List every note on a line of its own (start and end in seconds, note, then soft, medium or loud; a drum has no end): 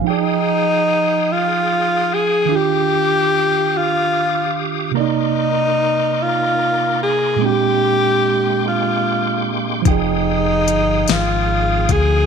0.01 2.44 F3 medium
0.01 2.46 D#4 medium
0.06 1.34 D#4 loud
0.06 2.49 G#4 medium
0.06 4.92 F5 medium
0.06 2.49 G5 medium
0.06 2.47 G5 medium
0.06 4.92 D#6 medium
0.10 2.49 G#4 medium
1.32 2.16 F4 loud
2.14 2.58 G#4 loud
2.46 4.89 D#3 medium
2.46 4.91 D4 medium
2.46 4.92 G4 medium
2.50 4.92 F4 medium
2.50 4.93 D6 medium
2.55 4.94 G4 medium
2.55 3.79 G4 loud
3.77 4.67 F4 loud
4.91 7.34 C3 medium
4.91 7.36 A#3 medium
4.91 7.38 D#4 medium
4.91 7.38 A#4 medium
4.96 6.24 D#4 loud
4.96 7.37 D5 medium
4.96 7.38 C6 medium
4.96 9.81 D6 medium
5.00 7.39 D#4 medium
6.22 7.02 F4 loud
7.03 7.47 G#4 loud
7.36 9.79 A#2 medium
7.36 9.80 G#3 medium
7.41 9.83 G#3 medium
7.41 9.83 A#3 medium
7.41 9.82 C4 medium
7.41 9.83 D4 medium
7.41 12.26 G5 medium
7.41 9.83 C6 medium
7.46 7.49 F#4 medium
7.46 8.65 G4 loud
7.52 9.87 G4 medium
8.68 9.53 F4 medium
9.82 12.24 F3 medium
9.82 12.26 D#4 medium
9.82 kick loud
9.82 closed hi-hat medium
9.86 10.70 F1 loud
9.86 11.13 D#4 loud
9.86 12.26 G#4 medium
9.86 12.26 F5 medium
9.86 12.26 G5 medium
9.86 12.26 D#6 medium
9.91 12.26 G#4 medium
10.68 11.05 G1 medium
10.68 closed hi-hat medium
11.08 11.86 G#1 medium
11.08 snare loud
11.08 closed hi-hat medium
11.12 11.94 F4 loud
11.89 12.26 D2 loud
11.89 12.26 G#4 medium
11.89 kick medium
11.89 closed hi-hat medium